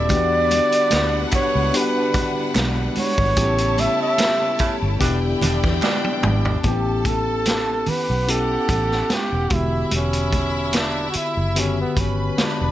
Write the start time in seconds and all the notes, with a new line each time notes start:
Already playing: D#1 B3 C#4 E4 F#4 G4 D5
0.09 E2 D3 G3 B3 D4 F#4 G4 B4 F#5, kick, closed hi-hat, muted conga
0.51 closed hi-hat, muted conga
0.72 closed hi-hat
0.91 D2, snare, clap, closed hi-hat, high conga
1.31 kick, clap, closed hi-hat, muted conga
1.35 C#5
1.55 C#2
1.73 B3 D4 F#4 G4 B4, closed hi-hat
2.14 kick, closed hi-hat, muted conga
2.55 B1, snare, clap, closed hi-hat, high conga
2.95 open hi-hat, high conga
2.99 C#5
3.18 G#1, kick
3.36 A1 C#3 A3 B3 C#4 E4 G4 C#5 A5, kick, closed hi-hat, muted conga
3.58 closed hi-hat
3.78 E5, closed hi-hat, muted conga
4.02 E5
4.18 snare, clap, closed hi-hat, high conga
4.59 C#3 A3 E4, muted fingered electric bass stroke, kick, closed hi-hat
4.82 G1
4.99 E1 B2 D3 G3 B3 D4 E4 G4 D5 G5, kick, closed hi-hat
5.42 E1 B2 G3 D4, closed hi-hat, muted conga, low conga
5.64 E2, kick, snare
5.82 B2 G3 D4, snare, clap, high conga
6.04 high tom
6.23 G#1, mid tom, high conga
6.45 floor tom
6.63 A1 B3 C4 E4 G4 A4 A5, kick, closed hi-hat, muted conga
6.71 C#4
7.05 A4, kick, closed hi-hat, muted conga
7.45 snare, closed hi-hat, high conga
7.86 G4 B4 F#5, muted fingered electric bass stroke, open hi-hat, muted conga, low conga
8.10 B1
8.27 B3 C#4 E4 G4 A4, closed hi-hat
8.69 A1, kick, closed hi-hat, muted conga
8.91 snare
9.10 G4, snare, closed hi-hat, high conga
9.32 E1
9.50 E1 D3 B3 E4 F#4 G4 E5, kick, closed hi-hat, high conga
9.54 E4
9.91 E1, closed hi-hat, muted conga
9.96 C#4
10.13 closed hi-hat
10.33 kick, closed hi-hat, muted conga
10.73 snare, closed hi-hat, high conga
10.77 D4
11.10 F#4, closed hi-hat
11.15 E4, muted fingered electric bass stroke
11.37 F#1
11.55 D3 B3 C#4 F#4 G4, closed hi-hat
11.81 B3
11.97 G1 C#4 B4 B5, kick, closed hi-hat, muted conga, low conga
12.38 D4, snare, closed hi-hat, high conga
12.61 E1